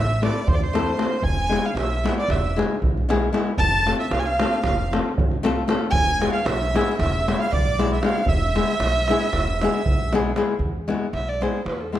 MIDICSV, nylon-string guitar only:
0, 0, Header, 1, 2, 480
1, 0, Start_track
1, 0, Tempo, 523560
1, 1121, Time_signature, 9, 3, 24, 8
1, 5438, Tempo, 518135
1, 11053, End_track
2, 0, Start_track
2, 0, Title_t, "Nylon-string guitar"
2, 0, Program_c, 0, 24
2, 201, Note_on_c, 0, 57, 68
2, 204, Note_on_c, 0, 60, 42
2, 209, Note_on_c, 0, 64, 55
2, 213, Note_on_c, 0, 69, 61
2, 369, Note_off_c, 0, 57, 0
2, 370, Note_off_c, 0, 60, 0
2, 373, Note_off_c, 0, 64, 0
2, 375, Note_off_c, 0, 69, 0
2, 670, Note_on_c, 0, 57, 75
2, 677, Note_on_c, 0, 60, 65
2, 687, Note_on_c, 0, 64, 68
2, 692, Note_on_c, 0, 69, 83
2, 836, Note_off_c, 0, 57, 0
2, 840, Note_off_c, 0, 60, 0
2, 845, Note_off_c, 0, 64, 0
2, 847, Note_off_c, 0, 69, 0
2, 889, Note_on_c, 0, 57, 55
2, 892, Note_on_c, 0, 60, 65
2, 901, Note_on_c, 0, 64, 53
2, 905, Note_on_c, 0, 69, 54
2, 1057, Note_off_c, 0, 57, 0
2, 1057, Note_off_c, 0, 60, 0
2, 1062, Note_off_c, 0, 64, 0
2, 1064, Note_off_c, 0, 69, 0
2, 1369, Note_on_c, 0, 56, 58
2, 1372, Note_on_c, 0, 59, 61
2, 1378, Note_on_c, 0, 64, 49
2, 1391, Note_on_c, 0, 68, 60
2, 1544, Note_off_c, 0, 56, 0
2, 1544, Note_off_c, 0, 59, 0
2, 1548, Note_off_c, 0, 64, 0
2, 1554, Note_off_c, 0, 68, 0
2, 1866, Note_on_c, 0, 56, 64
2, 1876, Note_on_c, 0, 59, 59
2, 1881, Note_on_c, 0, 64, 60
2, 1885, Note_on_c, 0, 68, 62
2, 2038, Note_off_c, 0, 56, 0
2, 2043, Note_off_c, 0, 59, 0
2, 2044, Note_off_c, 0, 64, 0
2, 2047, Note_off_c, 0, 68, 0
2, 2350, Note_on_c, 0, 56, 64
2, 2353, Note_on_c, 0, 59, 42
2, 2358, Note_on_c, 0, 64, 55
2, 2366, Note_on_c, 0, 68, 67
2, 2525, Note_off_c, 0, 56, 0
2, 2526, Note_off_c, 0, 59, 0
2, 2529, Note_off_c, 0, 64, 0
2, 2533, Note_off_c, 0, 68, 0
2, 2830, Note_on_c, 0, 56, 82
2, 2838, Note_on_c, 0, 59, 69
2, 2843, Note_on_c, 0, 64, 76
2, 2847, Note_on_c, 0, 68, 88
2, 2997, Note_off_c, 0, 56, 0
2, 3001, Note_off_c, 0, 59, 0
2, 3003, Note_off_c, 0, 64, 0
2, 3005, Note_off_c, 0, 68, 0
2, 3050, Note_on_c, 0, 56, 73
2, 3059, Note_on_c, 0, 59, 78
2, 3063, Note_on_c, 0, 64, 78
2, 3071, Note_on_c, 0, 68, 72
2, 3217, Note_off_c, 0, 56, 0
2, 3221, Note_off_c, 0, 59, 0
2, 3224, Note_off_c, 0, 64, 0
2, 3227, Note_off_c, 0, 68, 0
2, 3539, Note_on_c, 0, 57, 61
2, 3543, Note_on_c, 0, 60, 45
2, 3548, Note_on_c, 0, 65, 49
2, 3555, Note_on_c, 0, 69, 64
2, 3708, Note_off_c, 0, 57, 0
2, 3710, Note_off_c, 0, 60, 0
2, 3713, Note_off_c, 0, 65, 0
2, 3715, Note_off_c, 0, 69, 0
2, 4032, Note_on_c, 0, 57, 73
2, 4037, Note_on_c, 0, 60, 55
2, 4044, Note_on_c, 0, 65, 52
2, 4050, Note_on_c, 0, 69, 72
2, 4199, Note_off_c, 0, 57, 0
2, 4201, Note_off_c, 0, 60, 0
2, 4205, Note_off_c, 0, 65, 0
2, 4208, Note_off_c, 0, 69, 0
2, 4513, Note_on_c, 0, 57, 55
2, 4517, Note_on_c, 0, 60, 58
2, 4520, Note_on_c, 0, 65, 60
2, 4524, Note_on_c, 0, 69, 70
2, 4684, Note_off_c, 0, 57, 0
2, 4686, Note_off_c, 0, 60, 0
2, 4687, Note_off_c, 0, 65, 0
2, 4690, Note_off_c, 0, 69, 0
2, 4979, Note_on_c, 0, 57, 95
2, 4987, Note_on_c, 0, 60, 80
2, 4998, Note_on_c, 0, 65, 76
2, 5002, Note_on_c, 0, 69, 97
2, 5149, Note_off_c, 0, 57, 0
2, 5152, Note_off_c, 0, 60, 0
2, 5158, Note_off_c, 0, 65, 0
2, 5159, Note_off_c, 0, 69, 0
2, 5204, Note_on_c, 0, 57, 85
2, 5208, Note_on_c, 0, 60, 64
2, 5215, Note_on_c, 0, 65, 60
2, 5224, Note_on_c, 0, 69, 77
2, 5371, Note_off_c, 0, 57, 0
2, 5372, Note_off_c, 0, 60, 0
2, 5376, Note_off_c, 0, 65, 0
2, 5380, Note_off_c, 0, 69, 0
2, 5690, Note_on_c, 0, 56, 60
2, 5694, Note_on_c, 0, 59, 59
2, 5696, Note_on_c, 0, 64, 56
2, 5701, Note_on_c, 0, 68, 66
2, 5862, Note_off_c, 0, 56, 0
2, 5863, Note_off_c, 0, 59, 0
2, 5865, Note_off_c, 0, 64, 0
2, 5867, Note_off_c, 0, 68, 0
2, 6191, Note_on_c, 0, 56, 79
2, 6197, Note_on_c, 0, 59, 71
2, 6205, Note_on_c, 0, 64, 67
2, 6206, Note_on_c, 0, 68, 88
2, 6358, Note_off_c, 0, 56, 0
2, 6362, Note_off_c, 0, 59, 0
2, 6366, Note_off_c, 0, 64, 0
2, 6366, Note_off_c, 0, 68, 0
2, 6680, Note_on_c, 0, 56, 53
2, 6685, Note_on_c, 0, 59, 55
2, 6693, Note_on_c, 0, 64, 47
2, 6694, Note_on_c, 0, 68, 62
2, 6849, Note_off_c, 0, 56, 0
2, 6851, Note_off_c, 0, 59, 0
2, 6855, Note_off_c, 0, 68, 0
2, 6856, Note_off_c, 0, 64, 0
2, 7155, Note_on_c, 0, 56, 75
2, 7160, Note_on_c, 0, 59, 63
2, 7169, Note_on_c, 0, 64, 74
2, 7173, Note_on_c, 0, 68, 80
2, 7320, Note_off_c, 0, 56, 0
2, 7321, Note_off_c, 0, 59, 0
2, 7326, Note_off_c, 0, 64, 0
2, 7328, Note_off_c, 0, 68, 0
2, 7380, Note_on_c, 0, 56, 68
2, 7385, Note_on_c, 0, 59, 52
2, 7391, Note_on_c, 0, 64, 55
2, 7395, Note_on_c, 0, 68, 69
2, 7542, Note_off_c, 0, 56, 0
2, 7543, Note_off_c, 0, 59, 0
2, 7548, Note_off_c, 0, 64, 0
2, 7549, Note_off_c, 0, 68, 0
2, 7865, Note_on_c, 0, 56, 72
2, 7868, Note_on_c, 0, 59, 56
2, 7874, Note_on_c, 0, 64, 48
2, 7877, Note_on_c, 0, 68, 60
2, 8031, Note_off_c, 0, 56, 0
2, 8033, Note_off_c, 0, 59, 0
2, 8034, Note_off_c, 0, 64, 0
2, 8037, Note_off_c, 0, 68, 0
2, 8364, Note_on_c, 0, 56, 71
2, 8370, Note_on_c, 0, 59, 79
2, 8376, Note_on_c, 0, 64, 66
2, 8382, Note_on_c, 0, 68, 90
2, 8526, Note_off_c, 0, 56, 0
2, 8529, Note_off_c, 0, 59, 0
2, 8531, Note_off_c, 0, 64, 0
2, 8535, Note_off_c, 0, 68, 0
2, 8856, Note_on_c, 0, 56, 77
2, 8861, Note_on_c, 0, 59, 70
2, 8869, Note_on_c, 0, 64, 53
2, 8874, Note_on_c, 0, 68, 86
2, 9017, Note_off_c, 0, 56, 0
2, 9020, Note_off_c, 0, 59, 0
2, 9024, Note_off_c, 0, 64, 0
2, 9026, Note_off_c, 0, 68, 0
2, 9323, Note_on_c, 0, 56, 90
2, 9332, Note_on_c, 0, 59, 71
2, 9337, Note_on_c, 0, 64, 78
2, 9345, Note_on_c, 0, 68, 103
2, 9483, Note_off_c, 0, 56, 0
2, 9488, Note_off_c, 0, 59, 0
2, 9489, Note_off_c, 0, 64, 0
2, 9494, Note_off_c, 0, 68, 0
2, 9541, Note_on_c, 0, 56, 67
2, 9547, Note_on_c, 0, 59, 62
2, 9550, Note_on_c, 0, 64, 66
2, 9555, Note_on_c, 0, 68, 81
2, 9702, Note_off_c, 0, 56, 0
2, 9703, Note_off_c, 0, 59, 0
2, 9706, Note_off_c, 0, 64, 0
2, 9708, Note_off_c, 0, 68, 0
2, 10019, Note_on_c, 0, 56, 74
2, 10028, Note_on_c, 0, 59, 60
2, 10035, Note_on_c, 0, 64, 65
2, 10041, Note_on_c, 0, 68, 66
2, 10187, Note_off_c, 0, 56, 0
2, 10192, Note_off_c, 0, 59, 0
2, 10195, Note_off_c, 0, 64, 0
2, 10196, Note_off_c, 0, 68, 0
2, 10511, Note_on_c, 0, 56, 63
2, 10519, Note_on_c, 0, 59, 48
2, 10524, Note_on_c, 0, 64, 48
2, 10531, Note_on_c, 0, 68, 76
2, 10678, Note_off_c, 0, 56, 0
2, 10682, Note_off_c, 0, 59, 0
2, 10685, Note_off_c, 0, 64, 0
2, 10687, Note_off_c, 0, 68, 0
2, 10990, Note_on_c, 0, 56, 52
2, 10996, Note_on_c, 0, 59, 42
2, 11000, Note_on_c, 0, 64, 45
2, 11008, Note_on_c, 0, 68, 53
2, 11053, Note_off_c, 0, 56, 0
2, 11053, Note_off_c, 0, 59, 0
2, 11053, Note_off_c, 0, 64, 0
2, 11053, Note_off_c, 0, 68, 0
2, 11053, End_track
0, 0, End_of_file